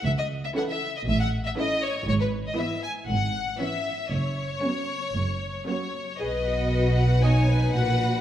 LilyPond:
<<
  \new Staff \with { instrumentName = "Violin section" } { \time 4/4 \key a \lydian \tempo 4 = 117 e''16 dis''8 e''16 fis''16 e''8 dis''16 e''16 fis''8 e''16 dis''8 cis''8 | \key b \major cis''16 b'8 dis''16 e''8 gis''8 fis''4 e''4 | cis''2. cis''4 | dis''4. fis''8 gis''4 fis''4 | }
  \new Staff \with { instrumentName = "Violin section" } { \time 4/4 \key a \lydian << { r4 <e' a'>4 r4 <e' a'>4 | \key b \major r4 <e' b'>4 r4 <cis' cis''>4 | r4 <cis' cis''>4 r4 <cis' cis''>4 | b'4 b'4 cis''8 b'4. | } \\ { r1 | r1 | r1 | gis'8 fis'4. dis'4 fis'4 | } >> }
  \new Staff \with { instrumentName = "Viola section" } { \time 4/4 \key a \lydian r4 <e cis'>4 r4 <e cis'>4 | \key b \major r4 <e b>4 r4 <e b>4 | r4 <fis b>4 r4 <fis ais>4 | r2 dis''8 b'4. | }
  \new Staff \with { instrumentName = "Cello section" } { \clef bass \time 4/4 \key a \lydian cis,4 r4 a,4 r4 | \key b \major gis,4 r4 gis,4 r4 | fis,4 r4 fis,4 r4 | b,2. ais,4 | }
  \new Staff \with { instrumentName = "Double bass section" } { \clef bass \time 4/4 \key a \lydian cis,4 r4 a,,4 r4 | \key b \major gis,,4 r4 gis,,4 r4 | fis,,4 r4 fis,,4 r4 | b,,2. ais,,4 | }
>>